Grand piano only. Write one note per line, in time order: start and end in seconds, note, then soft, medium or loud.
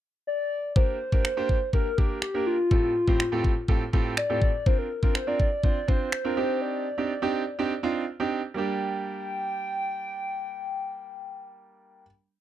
0.76 0.96 A#3 medium
0.76 0.96 D4 medium
0.76 0.96 G4 medium
0.76 0.96 A#4 medium
1.12 1.26 A#3 medium
1.12 1.26 D4 medium
1.12 1.26 G4 medium
1.12 1.26 A#4 medium
1.37 1.57 A#3 medium
1.37 1.57 D4 medium
1.37 1.57 G4 medium
1.37 1.57 C5 medium
1.73 1.87 A#3 medium
1.73 1.87 D4 medium
1.73 1.87 G4 medium
1.73 1.87 A#4 medium
1.98 2.18 A#3 medium
1.98 2.18 D4 medium
1.98 2.18 G4 medium
1.98 2.18 A#4 medium
2.34 2.54 A#3 medium
2.34 2.54 D4 medium
2.34 2.54 G4 medium
2.34 2.54 A#4 medium
2.71 2.91 A2 medium
2.71 2.91 C4 medium
2.71 2.91 F4 medium
2.71 2.91 G4 medium
2.71 2.91 A4 medium
3.08 3.21 A2 medium
3.08 3.21 C4 medium
3.08 3.21 F4 medium
3.08 3.21 G4 medium
3.08 3.21 C5 medium
3.32 3.52 A2 medium
3.32 3.52 C4 medium
3.32 3.52 F4 medium
3.32 3.52 G4 medium
3.32 3.52 A4 medium
3.69 3.82 A2 medium
3.69 3.82 C4 medium
3.69 3.82 F4 medium
3.69 3.82 G4 medium
3.69 3.82 A4 medium
3.93 4.13 A2 medium
3.93 4.13 C4 medium
3.93 4.13 F4 medium
3.93 4.13 G4 medium
3.93 4.13 A4 loud
4.30 4.49 A2 medium
4.30 4.49 C4 medium
4.30 4.49 F4 medium
4.30 4.49 G4 medium
4.30 4.50 A4 medium
4.66 4.86 C4 medium
4.66 4.86 D4 medium
4.66 4.86 F4 medium
4.66 4.86 A#4 medium
5.03 5.16 C4 medium
5.03 5.16 D4 medium
5.03 5.16 F4 medium
5.03 5.16 A#4 medium
5.27 5.47 C4 medium
5.27 5.47 D4 medium
5.27 5.47 F4 medium
5.27 5.47 A#4 medium
5.64 5.77 C4 medium
5.64 5.77 D4 medium
5.64 5.77 F4 medium
5.64 5.77 C5 medium
5.88 6.08 C4 medium
5.88 6.08 D4 medium
5.88 6.08 F4 medium
5.88 6.08 C5 medium
6.24 6.35 C4 medium
6.24 6.35 D4 medium
6.24 6.37 F4 medium
6.24 6.37 A#4 medium
6.37 6.86 C4 medium
6.37 6.86 D4 medium
6.37 6.86 D#4 medium
6.37 6.86 G4 medium
6.98 7.11 C4 medium
6.98 7.11 D4 medium
6.98 7.11 D#4 medium
6.98 7.11 G4 medium
7.22 7.42 C4 medium
7.22 7.42 D4 medium
7.22 7.42 D#4 medium
7.22 7.42 G4 loud
7.59 7.72 C4 medium
7.59 7.72 D4 medium
7.59 7.72 D#4 medium
7.59 7.72 G4 medium
7.83 8.03 C4 medium
7.83 8.03 D4 medium
7.83 8.03 D#4 medium
7.83 8.03 F4 loud
8.20 8.39 C4 medium
8.20 8.39 D4 medium
8.20 8.40 D#4 medium
8.20 8.40 G4 medium
8.54 12.02 G3 medium
8.54 12.03 A#3 medium
8.54 12.05 D4 medium
8.54 12.06 G4 medium